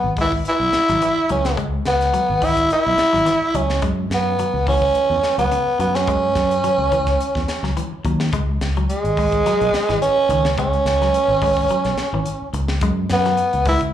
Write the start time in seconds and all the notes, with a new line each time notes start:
Already playing: B3
0.04 G#1
0.17 G#3, kick, open hi-hat
0.21 E4
0.32 kick
0.45 E4, muted fingered electric bass stroke, closed hi-hat
0.60 B1
0.73 muted fingered electric bass stroke, snare, closed hi-hat
0.89 G#1 F#3, snare, closed hi-hat
1.02 E3, closed hi-hat
1.18 muted fingered electric bass stroke
1.29 C#2 F#3 C#4, closed hi-hat
1.45 snare, closed hi-hat
1.57 G#3, kick, closed hi-hat
1.85 C#2 B3, snare, closed hi-hat
2.01 snare, closed hi-hat
2.14 F#3, closed hi-hat
2.29 G#1
2.42 E3 E4, kick, open hi-hat
2.57 kick, closed hi-hat
2.70 E4, closed hi-hat
2.86 B1
2.98 muted fingered electric bass stroke, snare, closed hi-hat
3.13 G#1 F#3, snare
3.26 E3, snare, closed hi-hat
3.42 muted fingered electric bass stroke
3.54 C#2 F#3 C#4, closed hi-hat
3.70 snare
3.82 F#2 G#3, kick, closed hi-hat
4.10 F#2, snare, closed hi-hat
4.14 B3
4.39 F#3, closed hi-hat
4.54 C#2
4.67 E3 C#4, kick, open hi-hat
4.82 kick
4.95 muted fingered electric bass stroke, closed hi-hat
5.10 E2
5.23 muted fingered electric bass stroke, snare, closed hi-hat
5.38 C#2 F#3 B3, closed hi-hat
5.51 C#3, closed hi-hat
5.67 muted fingered electric bass stroke
5.79 F#2 F#3 B3, closed hi-hat
5.95 C#4, snare, closed hi-hat
6.07 G#3, kick, closed hi-hat
6.35 F#2, kick, snare, closed hi-hat
6.51 closed hi-hat
6.64 F#3, closed hi-hat
6.78 C#2
6.92 E3, kick, closed hi-hat
7.07 kick, snare, closed hi-hat
7.19 muted fingered electric bass stroke, closed hi-hat
7.35 E2, kick, snare
7.48 muted fingered electric bass stroke, snare, closed hi-hat
7.63 C#2 F#3, snare
7.77 E3, closed hi-hat
7.91 muted fingered electric bass stroke
8.04 D#2 F#3, kick, closed hi-hat
8.20 snare
8.33 C#2 G#3, kick, closed hi-hat
8.61 C#2, snare, closed hi-hat
8.77 F#3, closed hi-hat
8.89 G#3, closed hi-hat
9.04 G#1, closed hi-hat
9.17 G#3, kick, open hi-hat
9.32 kick, closed hi-hat
9.46 F#3, muted fingered electric bass stroke, snare, closed hi-hat
9.61 B1, closed hi-hat
9.74 muted fingered electric bass stroke, snare, closed hi-hat
9.89 G#1 E3, snare, closed hi-hat
10.02 C#4, closed hi-hat
10.17 muted fingered electric bass stroke
10.29 C#2 D#3, closed hi-hat
10.45 snare
10.58 G#3 C#4, kick, closed hi-hat
10.73 closed hi-hat
10.85 C#2, snare, closed hi-hat
11.02 F#3, snare, closed hi-hat
11.14 closed hi-hat
11.28 G#1
11.42 G#3, kick, open hi-hat
11.57 kick
11.69 F#3, muted fingered electric bass stroke, closed hi-hat
11.84 B1, snare, closed hi-hat
11.97 muted fingered electric bass stroke, snare, closed hi-hat
12.13 G#1 E3
12.26 closed hi-hat
12.42 muted fingered electric bass stroke
12.53 C#2, muted clean electric guitar stroke, closed hi-hat
12.68 snare, closed hi-hat
12.81 F#2 G#3, kick, closed hi-hat
13.09 F#2 B3, snare, closed hi-hat
13.25 F#3, snare, closed hi-hat
13.37 closed hi-hat
13.53 C#2, closed hi-hat
13.65 G#3 E4, kick, open hi-hat
13.80 kick, closed hi-hat